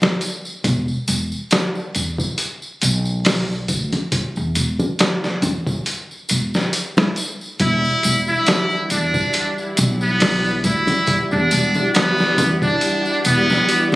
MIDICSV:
0, 0, Header, 1, 5, 480
1, 0, Start_track
1, 0, Key_signature, 1, "minor"
1, 0, Tempo, 869565
1, 356, Time_signature, 4, 2, 24, 8
1, 7703, End_track
2, 0, Start_track
2, 0, Title_t, "String machine"
2, 0, Program_c, 0, 50
2, 4200, Note_on_c, 0, 67, 71
2, 4201, Note_on_c, 0, 64, 75
2, 4203, Note_on_c, 0, 74, 70
2, 4203, Note_on_c, 0, 78, 88
2, 7703, Note_off_c, 0, 64, 0
2, 7703, Note_off_c, 0, 67, 0
2, 7703, Note_off_c, 0, 74, 0
2, 7703, Note_off_c, 0, 78, 0
2, 7703, End_track
3, 0, Start_track
3, 0, Title_t, "Muted trumpet"
3, 0, Program_c, 1, 59
3, 4201, Note_on_c, 1, 64, 89
3, 4531, Note_off_c, 1, 64, 0
3, 4572, Note_on_c, 1, 64, 89
3, 4886, Note_off_c, 1, 64, 0
3, 4922, Note_on_c, 1, 62, 86
3, 5252, Note_off_c, 1, 62, 0
3, 5532, Note_on_c, 1, 59, 89
3, 5846, Note_off_c, 1, 59, 0
3, 5881, Note_on_c, 1, 64, 86
3, 6211, Note_off_c, 1, 64, 0
3, 6250, Note_on_c, 1, 62, 87
3, 6564, Note_off_c, 1, 62, 0
3, 6596, Note_on_c, 1, 59, 92
3, 6929, Note_off_c, 1, 59, 0
3, 6972, Note_on_c, 1, 62, 87
3, 7286, Note_off_c, 1, 62, 0
3, 7320, Note_on_c, 1, 59, 91
3, 7651, Note_off_c, 1, 59, 0
3, 7703, End_track
4, 0, Start_track
4, 0, Title_t, "Upright bass"
4, 0, Program_c, 2, 32
4, 356, Note_on_c, 2, 28, 85
4, 473, Note_off_c, 2, 28, 0
4, 597, Note_on_c, 2, 28, 73
4, 713, Note_off_c, 2, 28, 0
4, 1080, Note_on_c, 2, 40, 74
4, 1195, Note_off_c, 2, 40, 0
4, 1559, Note_on_c, 2, 35, 88
4, 2017, Note_off_c, 2, 35, 0
4, 2037, Note_on_c, 2, 38, 81
4, 2153, Note_off_c, 2, 38, 0
4, 2412, Note_on_c, 2, 40, 86
4, 2505, Note_off_c, 2, 40, 0
4, 2519, Note_on_c, 2, 28, 67
4, 2634, Note_off_c, 2, 28, 0
4, 3000, Note_on_c, 2, 40, 80
4, 3114, Note_off_c, 2, 40, 0
4, 3482, Note_on_c, 2, 28, 65
4, 3595, Note_off_c, 2, 28, 0
4, 4197, Note_on_c, 2, 28, 94
4, 4313, Note_off_c, 2, 28, 0
4, 4443, Note_on_c, 2, 28, 72
4, 4556, Note_off_c, 2, 28, 0
4, 4920, Note_on_c, 2, 40, 75
4, 5034, Note_off_c, 2, 40, 0
4, 5401, Note_on_c, 2, 35, 88
4, 5858, Note_off_c, 2, 35, 0
4, 5877, Note_on_c, 2, 38, 82
4, 5993, Note_off_c, 2, 38, 0
4, 6252, Note_on_c, 2, 40, 92
4, 6345, Note_off_c, 2, 40, 0
4, 6362, Note_on_c, 2, 28, 71
4, 6475, Note_off_c, 2, 28, 0
4, 6840, Note_on_c, 2, 40, 78
4, 6954, Note_off_c, 2, 40, 0
4, 7319, Note_on_c, 2, 28, 75
4, 7434, Note_off_c, 2, 28, 0
4, 7703, End_track
5, 0, Start_track
5, 0, Title_t, "Drums"
5, 10, Note_on_c, 9, 64, 62
5, 13, Note_on_c, 9, 54, 22
5, 17, Note_on_c, 9, 38, 93
5, 65, Note_off_c, 9, 64, 0
5, 68, Note_off_c, 9, 54, 0
5, 72, Note_off_c, 9, 38, 0
5, 116, Note_on_c, 9, 42, 59
5, 119, Note_on_c, 9, 54, 75
5, 171, Note_off_c, 9, 42, 0
5, 174, Note_off_c, 9, 54, 0
5, 249, Note_on_c, 9, 54, 38
5, 304, Note_off_c, 9, 54, 0
5, 354, Note_on_c, 9, 36, 106
5, 355, Note_on_c, 9, 42, 79
5, 356, Note_on_c, 9, 54, 46
5, 409, Note_off_c, 9, 36, 0
5, 410, Note_off_c, 9, 42, 0
5, 411, Note_off_c, 9, 54, 0
5, 486, Note_on_c, 9, 54, 24
5, 541, Note_off_c, 9, 54, 0
5, 594, Note_on_c, 9, 54, 86
5, 595, Note_on_c, 9, 42, 57
5, 649, Note_off_c, 9, 54, 0
5, 650, Note_off_c, 9, 42, 0
5, 727, Note_on_c, 9, 54, 36
5, 783, Note_off_c, 9, 54, 0
5, 832, Note_on_c, 9, 54, 52
5, 834, Note_on_c, 9, 42, 73
5, 842, Note_on_c, 9, 38, 101
5, 887, Note_off_c, 9, 54, 0
5, 889, Note_off_c, 9, 42, 0
5, 897, Note_off_c, 9, 38, 0
5, 967, Note_on_c, 9, 54, 22
5, 1023, Note_off_c, 9, 54, 0
5, 1075, Note_on_c, 9, 42, 60
5, 1079, Note_on_c, 9, 54, 83
5, 1130, Note_off_c, 9, 42, 0
5, 1135, Note_off_c, 9, 54, 0
5, 1206, Note_on_c, 9, 36, 84
5, 1212, Note_on_c, 9, 54, 41
5, 1261, Note_off_c, 9, 36, 0
5, 1267, Note_off_c, 9, 54, 0
5, 1313, Note_on_c, 9, 42, 78
5, 1314, Note_on_c, 9, 54, 55
5, 1368, Note_off_c, 9, 42, 0
5, 1370, Note_off_c, 9, 54, 0
5, 1446, Note_on_c, 9, 54, 23
5, 1502, Note_off_c, 9, 54, 0
5, 1554, Note_on_c, 9, 42, 66
5, 1562, Note_on_c, 9, 54, 84
5, 1609, Note_off_c, 9, 42, 0
5, 1618, Note_off_c, 9, 54, 0
5, 1685, Note_on_c, 9, 54, 36
5, 1741, Note_off_c, 9, 54, 0
5, 1793, Note_on_c, 9, 46, 70
5, 1798, Note_on_c, 9, 54, 49
5, 1801, Note_on_c, 9, 38, 100
5, 1848, Note_off_c, 9, 46, 0
5, 1853, Note_off_c, 9, 54, 0
5, 1857, Note_off_c, 9, 38, 0
5, 1931, Note_on_c, 9, 54, 21
5, 1986, Note_off_c, 9, 54, 0
5, 2033, Note_on_c, 9, 42, 59
5, 2035, Note_on_c, 9, 36, 80
5, 2036, Note_on_c, 9, 54, 78
5, 2089, Note_off_c, 9, 42, 0
5, 2090, Note_off_c, 9, 36, 0
5, 2091, Note_off_c, 9, 54, 0
5, 2167, Note_on_c, 9, 42, 41
5, 2167, Note_on_c, 9, 64, 51
5, 2169, Note_on_c, 9, 54, 35
5, 2222, Note_off_c, 9, 42, 0
5, 2222, Note_off_c, 9, 64, 0
5, 2224, Note_off_c, 9, 54, 0
5, 2274, Note_on_c, 9, 36, 97
5, 2274, Note_on_c, 9, 42, 82
5, 2275, Note_on_c, 9, 54, 44
5, 2329, Note_off_c, 9, 42, 0
5, 2330, Note_off_c, 9, 36, 0
5, 2330, Note_off_c, 9, 54, 0
5, 2406, Note_on_c, 9, 54, 22
5, 2461, Note_off_c, 9, 54, 0
5, 2513, Note_on_c, 9, 42, 55
5, 2513, Note_on_c, 9, 54, 80
5, 2568, Note_off_c, 9, 54, 0
5, 2569, Note_off_c, 9, 42, 0
5, 2647, Note_on_c, 9, 64, 54
5, 2648, Note_on_c, 9, 54, 37
5, 2702, Note_off_c, 9, 64, 0
5, 2703, Note_off_c, 9, 54, 0
5, 2755, Note_on_c, 9, 42, 81
5, 2755, Note_on_c, 9, 54, 48
5, 2763, Note_on_c, 9, 38, 112
5, 2810, Note_off_c, 9, 42, 0
5, 2810, Note_off_c, 9, 54, 0
5, 2818, Note_off_c, 9, 38, 0
5, 2891, Note_on_c, 9, 54, 23
5, 2893, Note_on_c, 9, 38, 41
5, 2947, Note_off_c, 9, 54, 0
5, 2948, Note_off_c, 9, 38, 0
5, 2993, Note_on_c, 9, 42, 59
5, 2994, Note_on_c, 9, 64, 71
5, 2998, Note_on_c, 9, 54, 86
5, 3048, Note_off_c, 9, 42, 0
5, 3050, Note_off_c, 9, 64, 0
5, 3054, Note_off_c, 9, 54, 0
5, 3127, Note_on_c, 9, 36, 87
5, 3130, Note_on_c, 9, 54, 37
5, 3183, Note_off_c, 9, 36, 0
5, 3185, Note_off_c, 9, 54, 0
5, 3235, Note_on_c, 9, 42, 77
5, 3237, Note_on_c, 9, 54, 49
5, 3290, Note_off_c, 9, 42, 0
5, 3292, Note_off_c, 9, 54, 0
5, 3373, Note_on_c, 9, 54, 23
5, 3428, Note_off_c, 9, 54, 0
5, 3470, Note_on_c, 9, 54, 90
5, 3475, Note_on_c, 9, 42, 64
5, 3525, Note_off_c, 9, 54, 0
5, 3530, Note_off_c, 9, 42, 0
5, 3611, Note_on_c, 9, 54, 39
5, 3615, Note_on_c, 9, 38, 32
5, 3666, Note_off_c, 9, 54, 0
5, 3670, Note_off_c, 9, 38, 0
5, 3715, Note_on_c, 9, 42, 75
5, 3715, Note_on_c, 9, 54, 55
5, 3770, Note_off_c, 9, 42, 0
5, 3770, Note_off_c, 9, 54, 0
5, 3848, Note_on_c, 9, 54, 22
5, 3848, Note_on_c, 9, 64, 54
5, 3853, Note_on_c, 9, 38, 94
5, 3903, Note_off_c, 9, 64, 0
5, 3904, Note_off_c, 9, 54, 0
5, 3908, Note_off_c, 9, 38, 0
5, 3953, Note_on_c, 9, 42, 60
5, 3960, Note_on_c, 9, 54, 83
5, 4008, Note_off_c, 9, 42, 0
5, 4015, Note_off_c, 9, 54, 0
5, 4092, Note_on_c, 9, 54, 33
5, 4147, Note_off_c, 9, 54, 0
5, 4193, Note_on_c, 9, 42, 81
5, 4194, Note_on_c, 9, 36, 97
5, 4194, Note_on_c, 9, 54, 40
5, 4248, Note_off_c, 9, 42, 0
5, 4249, Note_off_c, 9, 54, 0
5, 4250, Note_off_c, 9, 36, 0
5, 4330, Note_on_c, 9, 54, 26
5, 4385, Note_off_c, 9, 54, 0
5, 4434, Note_on_c, 9, 42, 58
5, 4439, Note_on_c, 9, 54, 89
5, 4489, Note_off_c, 9, 42, 0
5, 4494, Note_off_c, 9, 54, 0
5, 4566, Note_on_c, 9, 54, 35
5, 4621, Note_off_c, 9, 54, 0
5, 4671, Note_on_c, 9, 54, 46
5, 4673, Note_on_c, 9, 42, 78
5, 4681, Note_on_c, 9, 38, 99
5, 4726, Note_off_c, 9, 54, 0
5, 4728, Note_off_c, 9, 42, 0
5, 4737, Note_off_c, 9, 38, 0
5, 4802, Note_on_c, 9, 54, 20
5, 4857, Note_off_c, 9, 54, 0
5, 4914, Note_on_c, 9, 42, 62
5, 4915, Note_on_c, 9, 54, 87
5, 4969, Note_off_c, 9, 42, 0
5, 4970, Note_off_c, 9, 54, 0
5, 5045, Note_on_c, 9, 54, 35
5, 5046, Note_on_c, 9, 36, 82
5, 5101, Note_off_c, 9, 54, 0
5, 5102, Note_off_c, 9, 36, 0
5, 5150, Note_on_c, 9, 54, 45
5, 5154, Note_on_c, 9, 42, 82
5, 5205, Note_off_c, 9, 54, 0
5, 5210, Note_off_c, 9, 42, 0
5, 5289, Note_on_c, 9, 54, 23
5, 5344, Note_off_c, 9, 54, 0
5, 5393, Note_on_c, 9, 42, 63
5, 5394, Note_on_c, 9, 54, 89
5, 5448, Note_off_c, 9, 42, 0
5, 5449, Note_off_c, 9, 54, 0
5, 5525, Note_on_c, 9, 54, 34
5, 5580, Note_off_c, 9, 54, 0
5, 5632, Note_on_c, 9, 46, 72
5, 5632, Note_on_c, 9, 54, 50
5, 5640, Note_on_c, 9, 38, 106
5, 5687, Note_off_c, 9, 46, 0
5, 5688, Note_off_c, 9, 54, 0
5, 5696, Note_off_c, 9, 38, 0
5, 5767, Note_on_c, 9, 54, 22
5, 5822, Note_off_c, 9, 54, 0
5, 5873, Note_on_c, 9, 42, 61
5, 5874, Note_on_c, 9, 36, 82
5, 5875, Note_on_c, 9, 54, 74
5, 5928, Note_off_c, 9, 42, 0
5, 5929, Note_off_c, 9, 36, 0
5, 5930, Note_off_c, 9, 54, 0
5, 6002, Note_on_c, 9, 64, 55
5, 6003, Note_on_c, 9, 54, 34
5, 6005, Note_on_c, 9, 42, 40
5, 6057, Note_off_c, 9, 64, 0
5, 6058, Note_off_c, 9, 54, 0
5, 6060, Note_off_c, 9, 42, 0
5, 6108, Note_on_c, 9, 54, 41
5, 6113, Note_on_c, 9, 42, 77
5, 6114, Note_on_c, 9, 36, 102
5, 6163, Note_off_c, 9, 54, 0
5, 6168, Note_off_c, 9, 42, 0
5, 6169, Note_off_c, 9, 36, 0
5, 6245, Note_on_c, 9, 54, 24
5, 6300, Note_off_c, 9, 54, 0
5, 6353, Note_on_c, 9, 54, 80
5, 6355, Note_on_c, 9, 42, 60
5, 6408, Note_off_c, 9, 54, 0
5, 6410, Note_off_c, 9, 42, 0
5, 6483, Note_on_c, 9, 54, 33
5, 6487, Note_on_c, 9, 64, 49
5, 6538, Note_off_c, 9, 54, 0
5, 6542, Note_off_c, 9, 64, 0
5, 6592, Note_on_c, 9, 54, 42
5, 6595, Note_on_c, 9, 42, 87
5, 6603, Note_on_c, 9, 38, 104
5, 6648, Note_off_c, 9, 54, 0
5, 6650, Note_off_c, 9, 42, 0
5, 6658, Note_off_c, 9, 38, 0
5, 6724, Note_on_c, 9, 54, 22
5, 6736, Note_on_c, 9, 38, 41
5, 6779, Note_off_c, 9, 54, 0
5, 6791, Note_off_c, 9, 38, 0
5, 6833, Note_on_c, 9, 64, 82
5, 6834, Note_on_c, 9, 42, 64
5, 6835, Note_on_c, 9, 54, 80
5, 6888, Note_off_c, 9, 64, 0
5, 6889, Note_off_c, 9, 42, 0
5, 6890, Note_off_c, 9, 54, 0
5, 6966, Note_on_c, 9, 36, 87
5, 6969, Note_on_c, 9, 54, 36
5, 7021, Note_off_c, 9, 36, 0
5, 7024, Note_off_c, 9, 54, 0
5, 7073, Note_on_c, 9, 42, 80
5, 7077, Note_on_c, 9, 54, 50
5, 7128, Note_off_c, 9, 42, 0
5, 7132, Note_off_c, 9, 54, 0
5, 7205, Note_on_c, 9, 54, 24
5, 7260, Note_off_c, 9, 54, 0
5, 7311, Note_on_c, 9, 54, 82
5, 7313, Note_on_c, 9, 42, 65
5, 7366, Note_off_c, 9, 54, 0
5, 7368, Note_off_c, 9, 42, 0
5, 7450, Note_on_c, 9, 54, 37
5, 7454, Note_on_c, 9, 38, 32
5, 7505, Note_off_c, 9, 54, 0
5, 7509, Note_off_c, 9, 38, 0
5, 7555, Note_on_c, 9, 42, 78
5, 7555, Note_on_c, 9, 54, 50
5, 7610, Note_off_c, 9, 42, 0
5, 7610, Note_off_c, 9, 54, 0
5, 7684, Note_on_c, 9, 54, 21
5, 7686, Note_on_c, 9, 64, 55
5, 7703, Note_off_c, 9, 54, 0
5, 7703, Note_off_c, 9, 64, 0
5, 7703, End_track
0, 0, End_of_file